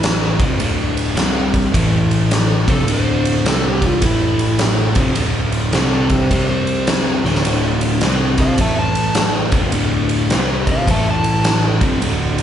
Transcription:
Already playing: picked electric bass A1, overdriven electric guitar A2 E3 A3
0.03 snare, ride
0.40 picked electric bass F1, overdriven electric guitar F2 C3 F3, kick, snare, ride
0.59 picked electric bass D1, overdriven electric guitar D2 A2 D3, ride
0.97 ride
1.15 picked electric bass C2, overdriven electric guitar C3 G3 C4, snare, ride
1.54 kick, ride
1.72 picked electric bass A1, overdriven electric guitar A2 E3 A3, kick, ride
2.11 ride
2.31 snare, ride
2.66 picked electric bass F1, overdriven electric guitar F2 C3 F3, kick, ride
2.71 electric slide guitar A4
2.87 picked electric bass D1, overdriven electric guitar D2 A2 D3, ride
2.92 electric slide guitar C5
3.25 ride
3.44 picked electric bass C2, overdriven electric guitar C3 G3 C4, snare, ride
3.49 electric slide guitar A4
3.68 electric slide guitar G4
3.82 kick, ride
3.86 electric slide guitar F4
4.02 picked electric bass A1, overdriven electric guitar A2 E3 A3, electric slide guitar E4, kick, ride
4.39 ride
4.59 snare, ride
4.95 picked electric bass F1, overdriven electric guitar F2 C3 F3, kick, ride
5.15 picked electric bass D1, overdriven electric guitar D2 A2 D3, ride
5.52 ride
5.72 picked electric bass C2, overdriven electric guitar C3 G3 C4, electric slide guitar A4 D5, snare, ride
5.94 electric slide guitar A4 D5
6.10 electric slide guitar G4 C5, kick, ride
6.31 picked electric bass C2, overdriven electric guitar C3 G3 C4, electric slide guitar G4 C5, kick, ride
6.49 electric slide guitar C5
6.67 ride
6.87 snare, ride
7.23 picked electric bass D1, overdriven electric guitar D2 A2 D3, snare
7.35 snare
7.45 picked electric bass D1, overdriven electric guitar D2 A2 D3, ride
7.81 ride
8.01 picked electric bass C2, overdriven electric guitar C3 G3 C4, snare, ride
8.38 electric slide guitar C5 F5, kick, ride
8.58 picked electric bass A1, overdriven electric guitar A2 E3 A3, electric slide guitar E5 A5, kick, ride
8.79 electric slide guitar A5
8.95 ride
9.15 snare, ride
9.52 picked electric bass F1, overdriven electric guitar F2 C3 F3, kick, ride
9.72 picked electric bass D1, overdriven electric guitar D2 A2 D3, ride
10.09 ride
10.30 picked electric bass C2, overdriven electric guitar C3 G3 C4, snare, ride
10.67 electric slide guitar C5, kick, ride
10.71 electric slide guitar F5
10.87 picked electric bass A1, overdriven electric guitar A2 E3 A3, electric slide guitar E5 A5, kick, ride
11.10 electric slide guitar A5
11.24 ride
11.44 snare, ride
11.81 picked electric bass F1, overdriven electric guitar F2 C3 F3, kick, ride
12.02 picked electric bass D1, overdriven electric guitar D2 A2 D3, ride
12.38 ride

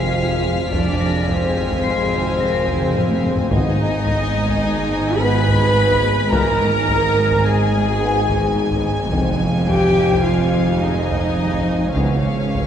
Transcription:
Already playing: double bass section F1, synth drone G#1, cello section F2, french horn section G#3 C4, glass harmonica F4 C5 F5, viola section F4, violin section F5 G#5 F6 B6, celesta A#6 C7
0.16 cello section F2
0.45 cello section F2
0.73 double bass section F1, synth drone G#1, cello section F2, french horn section G#3 C4, viola section D4, glass harmonica G#4 C5 F5, violin section D5 G#5, taiko
1.00 cello section F2, celesta A#6
1.29 cello section F3, viola section C4, violin section C5, taiko
1.57 cello section F3
1.71 taiko
1.83 cello section F2, celesta C6 C7
2.13 cello section F2
2.40 cello section F2, celesta A#4 A#6
2.67 cello section F2, taiko
2.82 taiko mid
2.95 cello section F2, taiko low-mid
3.10 taiko high
3.23 cello section F2, taiko low-mid
3.37 taiko low
3.50 double bass section G#1, synth drone G#1, cello section G#2, timpani G#2, french horn section G#3 B3, glass harmonica B3 G#4 D#5, viola section D#4, violin section D#5 G#5, taiko
3.78 cello section G#2
4.06 cello section G#3, taiko
4.34 cello section G#3
4.48 taiko
4.62 cello section G#2
4.91 cello section G#2
5.19 cello section G#2, french horn section G#3 B3, viola section B4, violin section B5
5.48 cello section G#2, taiko
5.76 cello section G#2
5.91 taiko
6.04 cello section G#2
6.32 synth drone G#1, double bass section G#1, cello section G#2, french horn section G#3 B3, glass harmonica B3 D#4 D#5, viola section A#4, violin section G#5 A#5, taiko
6.60 cello section G#2
6.88 cello section G#3, taiko
7.17 cello section G#3
7.31 taiko
7.44 cello section G#2, viola section G#4, violin section G#5
7.72 cello section G#2
8.00 cello section G#2, french horn section G#3 B3
8.28 cello section G#2, taiko
8.57 cello section G#2
8.71 taiko
8.84 cello section G#2
9.12 double bass section F1, cello section F2, french horn section G#3 C4, glass harmonica C5 F5, taiko
9.40 cello section F2
9.68 cello section F3, viola section G4, violin section G5, taiko
9.97 cello section F3
10.12 taiko
10.25 cello section F2, viola section F4, violin section F5
10.53 cello section F2
10.81 cello section F2, french horn section G#3 C4, viola section D#4, violin section D#5
11.10 cello section F2, taiko
11.39 cello section F2
11.54 taiko
11.67 cello section F2
11.96 synth drone G#1, cello section C#2 C#3, double bass section C#2, french horn section F3 B3, viola section C#4, glass harmonica G#4 B4, violin section C#5 F5, taiko
12.26 cello section C#3
12.55 cello section C#4, taiko

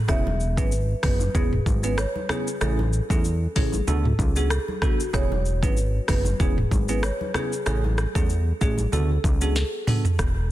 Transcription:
0.08 analog synth bass E1, tine electric piano B3 C#4 E4 G#4, marimba E5, kick, cross-stick, low conga, shaker
0.27 high conga
0.40 shaker
0.57 analog synth bass G#1, tine electric piano B3 C#4 E4 G#4, marimba B4, kick, high conga, shaker
0.72 shaker
1.03 analog synth bass F#1, tine electric piano B3 C#4 E4 G#4, marimba B4, kick, cross-stick, open hi-hat, low conga, shaker
1.20 high conga, shaker
1.35 analog synth bass E1, tine electric piano B3 C#4 E4 G#4, marimba G#4, kick, low conga, shaker
1.53 mid tom
1.66 analog synth bass G#1, kick, high conga, shaker
1.83 tine electric piano B3 C#4 E4 G#4, marimba B4, shaker
1.98 marimba C#5, cross-stick, shaker
2.16 high conga
2.29 tine electric piano B3 C#4 E4 G#4, marimba G#4, cross-stick, high conga, low conga, shaker
2.47 shaker
2.61 analog synth bass A1, tine electric piano A3 C#4 E4 G#4, marimba A4, cross-stick, low conga, shaker
2.79 high conga
2.93 shaker
3.10 analog synth bass E2, tine electric piano A3 C#4 E4 G#4, marimba A4, kick, high conga, shaker
3.24 shaker
3.56 analog synth bass A1, tine electric piano A3 C#4 E4 G#4, marimba G#4, kick, open hi-hat, low conga, shaker
3.72 high conga, shaker
3.87 analog synth bass D2, tine electric piano B3 D4 F#4 A4, marimba A4, low conga, shaker
4.05 mid tom
4.19 analog synth bass C#2, kick, high conga, shaker
4.36 tine electric piano B3 D4 F#4 A4, marimba G#4, shaker
4.50 marimba A4, cross-stick, shaker
4.68 high conga
4.82 tine electric piano B3 D4 F#4 A4, marimba F#4, kick, cross-stick, high conga, low conga, shaker
5.00 shaker
5.13 analog synth bass E1, tine electric piano B3 C#4 E4 G#4, marimba C#5, kick, cross-stick, low conga, shaker
5.32 high conga
5.45 shaker
5.63 analog synth bass G#1, tine electric piano B3 C#4 E4 G#4, marimba B4, kick, high conga, shaker
5.77 shaker
6.08 analog synth bass F#1, tine electric piano B3 C#4 E4 G#4, marimba B4, kick, cross-stick, open hi-hat, low conga, shaker
6.25 high conga, shaker
6.40 analog synth bass E1, tine electric piano B3 C#4 E4 G#4, marimba G#4, kick, low conga, shaker
6.58 mid tom
6.71 analog synth bass G#1, kick, high conga, shaker
6.89 tine electric piano B3 C#4 E4 G#4, marimba B4, shaker
7.03 marimba C#5, cross-stick, shaker
7.21 high conga
7.34 tine electric piano B3 C#4 E4 G#4, marimba G#4, cross-stick, high conga, low conga, shaker
7.53 shaker
7.66 analog synth bass A1, tine electric piano A3 C#4 E4 G#4, marimba A4, cross-stick, low conga, shaker
7.84 high conga
7.98 cross-stick, shaker
8.15 analog synth bass E2, tine electric piano A3 C#4 E4 G#4, marimba A4, kick, high conga, shaker
8.30 shaker
8.61 analog synth bass A1, tine electric piano A3 C#4 E4 G#4, marimba G#4, kick, shaker
8.78 high conga, shaker
8.92 analog synth bass D2, tine electric piano B3 D4 F#4 A4, marimba A4, low conga, shaker
9.24 analog synth bass C#2, kick, high conga, shaker
9.41 tine electric piano B3 D4 F#4 A4, marimba G#4, shaker
9.56 marimba A4, snare, shaker
9.87 tine electric piano B3 D4 F#4 A4, mid tom, open hi-hat, high conga, low conga, shaker
10.05 floor tom, shaker
10.19 analog synth bass E1, kick, cross-stick, shaker

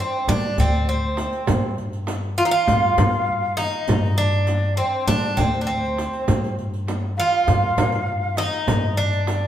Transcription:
0.00 bouzouki C4, ney C5
0.28 upright bass G3, bouzouki D4, ney D5, riq, darbuka dum, frame drum
0.57 upright bass D2, bouzouki C4, riq, darbuka dum
0.73 riq, darbuka ka
0.88 bouzouki C4, ney C5
1.04 darbuka ka
1.17 riq, frame drum
1.33 riq
1.47 upright bass G2, riq, frame drum, darbuka dum
1.63 darbuka ka
1.78 riq, darbuka ka
1.93 riq, darbuka ka
2.07 riq, darbuka tek, frame drum
2.38 bouzouki F4, ney F5, riq
2.45 bouzouki D#4
2.51 bouzouki F4, ney F5
2.68 upright bass G2, riq, frame drum, darbuka dum
2.97 upright bass G2, riq, darbuka dum, frame drum
3.13 riq, darbuka ka
3.43 darbuka ka
3.57 bouzouki D#4, ney D#5, riq, darbuka tek, frame drum
3.72 riq
3.88 upright bass G2, riq, darbuka dum, frame drum
4.03 ney D#5, darbuka ka
4.17 bouzouki D4, ney D5, riq
4.33 riq, darbuka ka
4.47 riq, darbuka tek, frame drum
4.77 bouzouki C4, ney C5, riq
5.07 upright bass G3, bouzouki D4, ney D5, riq, darbuka dum, frame drum
5.37 upright bass D2, bouzouki C4, ney C5, riq, darbuka dum, frame drum
5.53 riq, darbuka ka
5.61 bouzouki D4
5.67 bouzouki C4, ney C5
5.84 riq
5.97 riq, darbuka tek, frame drum
6.13 riq
6.28 upright bass G2, riq, darbuka dum, frame drum
6.43 riq, darbuka ka
6.58 riq, darbuka ka
6.73 riq, darbuka ka
6.87 riq, darbuka tek, frame drum
7.02 darbuka ka
7.17 bouzouki F4, ney F5, riq, darbuka tek
7.32 darbuka ka
7.47 upright bass G2, riq, frame drum, darbuka dum
7.77 upright bass G2, riq, darbuka dum, frame drum
7.92 riq, darbuka ka
8.23 darbuka ka
8.37 bouzouki D#4, ney D#5, riq, darbuka tek, frame drum
8.52 riq
8.67 upright bass G2, riq, frame drum, darbuka dum
8.83 darbuka ka
8.97 bouzouki D4, ney D5, riq, darbuka ka
9.03 ney D#5
9.10 ney D5, riq
9.27 riq, darbuka tek, frame drum

